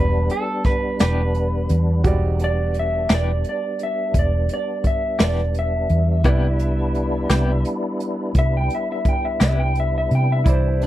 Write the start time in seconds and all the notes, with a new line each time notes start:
Already playing: E1 G3 B3 D4 F#4 G4 B4 D5
0.29 A4, closed hi-hat
0.64 B4, kick, snare, closed hi-hat
0.99 E1 E3 B3 D4 G4 B4, snare, closed hi-hat
1.34 closed hi-hat
1.69 E2, closed hi-hat
2.04 E1 G3 G#3 C4 D#4 F#4 G4 D5, kick, closed hi-hat
2.39 G3 B3 D4, closed hi-hat
2.44 D5
2.74 closed hi-hat
2.79 E5
3.09 E1 E3 B3 D4 G4, snare, closed hi-hat
3.15 D5
3.44 closed hi-hat
3.49 D5
3.79 closed hi-hat
3.83 E5
4.14 E1, kick, closed hi-hat
4.19 D5
4.49 closed hi-hat
4.54 D5
4.84 E5, kick, closed hi-hat
5.19 E1 E3 B3 D4 G4, snare, closed hi-hat
5.24 D5
5.54 closed hi-hat
5.59 E5
5.89 E2, closed hi-hat
6.24 C2 C3 G3 B3 D4 E4 G4 B4 D5, kick, closed hi-hat
6.59 closed hi-hat
6.95 closed hi-hat
7.29 C2 C3 B3 E4 G4, snare, closed hi-hat
7.65 closed hi-hat
8.00 closed hi-hat
8.35 C2, kick, closed hi-hat
8.39 E5
8.57 G5
8.70 closed hi-hat
8.75 E5
8.92 E5
9.05 G5, kick, closed hi-hat
9.25 E5
9.40 C2 C3 B3 E4 G4 E5, snare, closed hi-hat
9.60 G5
9.75 closed hi-hat
9.80 E5
9.98 E5
10.11 C3, closed hi-hat
10.15 G5
10.32 E5
10.44 C2 E3 G3 C4 D4 E4 D5 B5, kick, closed hi-hat
10.49 C5
10.82 D4, closed hi-hat